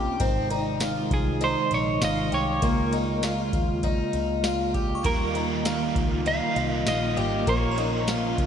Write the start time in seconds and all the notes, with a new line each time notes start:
Already playing: C2 A#3 C4 C#4 F4 G4
0.20 G#1 C3 D#3 G#3 C4 D#4, kick, ride
0.50 D#4, ride
0.80 F4, snare, ride, tambourine
1.11 C2 G#4, kick, ride
1.41 D#4 C5, ride
1.71 A#1 C#5, ride
2.02 G#1 F4 D#5, snare, ride, tambourine
2.32 C2 G4 C#5, ride
2.62 C#2 C#3 G#3 A#3 F4, kick, ride
2.92 D#4, ride
3.23 F4, snare, ride, tambourine
3.53 D#2, kick, ride
3.83 D#4, kick, ride
4.13 C#2, ride
4.44 F4, snare, ride, tambourine
4.74 G4, kick, ride
4.95 C#6
5.03 D#2 D#3 G3 A#3 A#4, kick, ride
5.08 D#4 F4
5.35 D#4, ride
5.65 F4, snare, ride, tambourine
5.96 C#2, kick, ride
6.25 G3 A#3 D#4 F4 F5, ride
6.55 C2 A#3 D#4 F4, ride
6.74 D#5
6.86 A#1 F4 D#5, snare, ride, tambourine
7.17 G#1 G4, ride
7.46 A#1 A#2 F3 A#3 C#4 C#5, kick, ride
7.51 F4
7.71 A#5
7.77 D#4, ride
8.07 F4, snare, ride, tambourine
8.30 C5
8.38 C#2, kick, ride